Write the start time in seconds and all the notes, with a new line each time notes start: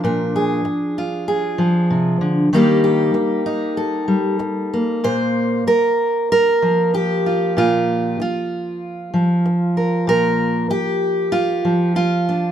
Already playing: F3 A#4
0.04 A#2 D4
0.36 G#4
0.65 muted steel-string acoustic guitar stroke
0.98 F4
1.28 G#4
1.58 F3
1.91 C3
2.21 D3
2.53 D#3 G3 A#3 D#4 G4
2.84 G4
3.14 muted steel-string acoustic guitar stroke
3.46 D#4
3.77 A4
4.08 G3
4.39 muted steel-string acoustic guitar stroke
4.74 A#3
5.04 A#2 C5
5.67 A#4, muted steel-string acoustic guitar stroke
6.32 A#4
6.62 F3
6.94 G4, muted steel-string acoustic guitar stroke
7.26 F4
7.57 A#2 F4
8.20 F4, muted steel-string acoustic guitar stroke
9.14 F3
9.46 muted steel-string acoustic guitar stroke
9.77 A#4
10.07 A#2 A#4
10.70 G4, muted steel-string acoustic guitar stroke
11.32 F4
11.65 F3
11.96 F4, muted steel-string acoustic guitar stroke
12.29 D4